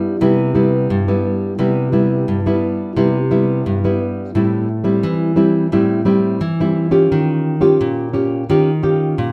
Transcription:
Already playing: G2 G3 B3 E4
0.21 C3 G3 B3 E4
0.54 G3 B3 E4
0.90 G2
1.08 G3 B3 E4
1.59 C3 G3 B3 E4
1.92 G3 B3 E4
2.28 G2
2.46 G3 B3 E4
2.97 C3 G3 B3 E4
3.31 G3 B3 E4
3.66 G2
3.84 G3 B3 E4
4.35 A2 G3 C4 E4
4.84 G3 C4 E4
5.03 E3
5.36 G3 C4 E4
5.72 A2 G3 C4 E4
6.05 G3 C4 E4
6.41 E3
6.60 G3 C4 E4
6.91 C#4 F4 G4
7.12 D#3
7.61 C#4 F4 G4
7.81 A#2
8.13 C#4 F4 G4
8.50 D#3 C#4 F4 G4
8.83 C#4 F4 G4
9.18 A#2

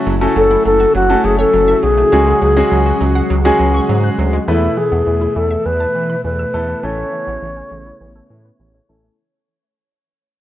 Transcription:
Already playing: C#3 F#3 A3 C#4 E4 F#4 A4
0.07 F#1 F#3
0.21 A3 C#4 F#4 A4
0.36 F#1 F#3 A4
0.51 E4
0.65 F#1 F#3 A4
0.80 F#4
0.95 F#1 F#3 F#4
1.10 A3 C#4 F#4 A4
1.24 F#1 F#3 G#4
1.39 A4 C#5
1.53 F#1 F#3
1.68 E5
1.83 B1 F#3 G#4
1.98 A3
2.12 C#2 F#3 G#3 C#4 F#4 G#4
2.27 G#3
2.42 C#2 F#3
2.56 G#3 C#4 F#4 G#4
2.71 C#2 F#3
2.86 F#4
3.01 C#2 F#3
3.15 F#5
3.30 C#2 F#3
3.45 G#3 C#4 F#4 G#4
3.60 C#2 F#3
3.74 C#6
3.89 G#2 F#3
4.04 F#6
4.18 D2 F#3
4.33 G#3
4.48 E2 B2 E3 A3 B3 E4 B4
4.63 A3
4.77 E3 G#4
4.92 E2 B3
5.07 E2 E3
5.21 E4
5.36 E2 E3 A4
5.51 E5
5.65 E2 E3 B4
5.80 A5
5.95 E3
6.10 B5
6.24 E2 E3 B4
6.39 E6
6.54 E2 E3 A3 B3 E4 A4
6.69 A3
6.83 A1 C#3 E3 A3 B3 C#4 E4 A4 C#5
6.98 A3
7.13 E3
7.27 A1 B3
7.42 A1 E3
7.57 C#4
7.71 A1 E3
7.86 E4
8.01 A1 E3
8.16 A4
8.30 A2 E3
8.45 B4
8.60 A1 E3
8.75 C#5
8.89 A1 E3 A3 C#4 E4 A4
9.04 A3

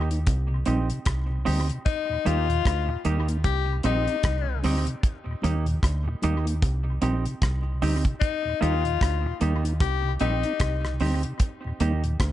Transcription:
Already playing: D#2
0.10 A#3 D#4, closed hi-hat
0.27 C2, kick, closed hi-hat
0.51 C3
0.66 A#1 G3 C4 D#4 G4, closed hi-hat
0.90 C3, closed hi-hat
1.05 C2, kick, cross-stick, closed hi-hat
1.30 C3
1.45 D2 G3 C4 D#4 G4, open hi-hat
1.69 C3, muted clean electric guitar stroke, closed hi-hat
1.85 D#4, kick, closed hi-hat
2.09 D#2 A#2
2.25 D#2 G3 A#3 D#4 F4 G4, closed hi-hat
2.48 D#2 A#2, closed hi-hat
2.65 D2, kick, cross-stick, closed hi-hat
2.88 D#2 A#2, muted clean electric guitar stroke
3.05 D#2 G3 A#3 D#4 G4, closed hi-hat
3.28 A#3 D#4, closed hi-hat
3.44 C2 G4, kick, closed hi-hat
3.68 C3
3.83 A#1 G3 C4 D#4 G4, closed hi-hat
4.06 C4 D#4, closed hi-hat
4.23 C2, kick, cross-stick, closed hi-hat
4.47 C3
4.62 D2 G3 C4 D#4 G4, open hi-hat
4.85 C3, closed hi-hat
5.03 kick, closed hi-hat
5.26 D#2 A#2
5.42 D#2 G3 A#3 D#4 G4, closed hi-hat
5.66 D#2 A#2, closed hi-hat
5.83 D2, kick, cross-stick, closed hi-hat
6.06 D#2 A#2, muted clean electric guitar stroke
6.22 D#2 G3 A#3 D#4 G4, closed hi-hat
6.45 A#3 D#4, closed hi-hat
6.62 C2, kick, closed hi-hat
6.85 C3
7.01 A#1 G3 C4 D#4 G4, closed hi-hat
7.25 C3, closed hi-hat
7.42 C2, kick, cross-stick, closed hi-hat
7.66 C3
7.82 D2 G3 C4 D#4 G4, open hi-hat
8.05 C3, muted clean electric guitar stroke, kick, closed hi-hat
8.20 D#4, kick, closed hi-hat
8.45 D#2 A#2
8.61 D#2 G3 A#3 D#4 F4 G4, closed hi-hat
8.84 D#2 A#2, closed hi-hat
9.01 D2, kick, cross-stick, closed hi-hat
9.24 D#2 A#2, muted clean electric guitar stroke
9.40 D#2 G3 A#3 D#4 G4, closed hi-hat
9.64 A#3 D#4, closed hi-hat
9.80 C2 G4, kick, closed hi-hat
10.04 C3
10.20 A#1 G3 C4 D#4 G4, closed hi-hat
10.43 C4 D#4, closed hi-hat
10.60 C2, kick, cross-stick, closed hi-hat
10.84 C3, cross-stick
11.00 D2 G3 C4 D#4 G4, open hi-hat
11.23 C3, muted clean electric guitar stroke, closed hi-hat
11.40 kick, closed hi-hat
11.65 D#2 A#2
11.80 D#2 G3 A#3 D#4 G4, closed hi-hat
12.04 D#2 A#2, closed hi-hat
12.20 D2, kick, cross-stick, closed hi-hat

